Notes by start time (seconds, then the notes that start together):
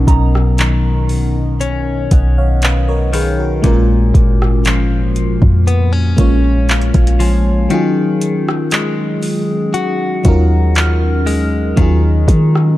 Already playing: B2 F#3 B3 C#4 D#4 F#4 A#4 D#5
0.07 B1 A#5, kick, closed hi-hat
0.35 cross-stick
0.58 D#3, clap, closed hi-hat
1.09 open hi-hat
1.61 C#4, closed hi-hat
2.11 B1 D#5 F#5, kick, closed hi-hat
2.38 C#5 F5
2.62 B4 D#5, clap, closed hi-hat
2.88 A#4 C#5
3.13 D#3 G#4 B4, open hi-hat
3.39 F#4 A#4
3.62 A#1 A#2 G#3 A#3 C#4 F4, kick, closed hi-hat
3.67 A#4
4.14 G#1, kick, closed hi-hat
4.42 cross-stick
4.65 F3, clap, closed hi-hat
5.16 closed hi-hat
5.42 F2, kick
5.67 B3, closed hi-hat
5.93 C#4
6.17 A#1 G#3 A#3 C#4 F4 C#5, kick, closed hi-hat
6.21 C#5
6.69 F5, clap, closed hi-hat
6.82 closed hi-hat
6.94 A#1, kick, closed hi-hat
7.07 closed hi-hat
7.20 F3 G#5, open hi-hat
7.69 D#3 F#3 C#4 D#4 F4, closed hi-hat
7.74 G#4
8.21 closed hi-hat
8.49 cross-stick
8.71 G#3, clap, closed hi-hat
9.23 open hi-hat
9.74 F#4, closed hi-hat
10.24 D#2 F#3 C#4 D#4 F4, kick, closed hi-hat
10.28 A#4
10.75 F6, clap, closed hi-hat
11.26 G#3, open hi-hat
11.76 D#2 D#3 F#3 C#4 D#4 F4, kick, closed hi-hat
11.81 G#4
12.28 D#3, kick, closed hi-hat
12.55 cross-stick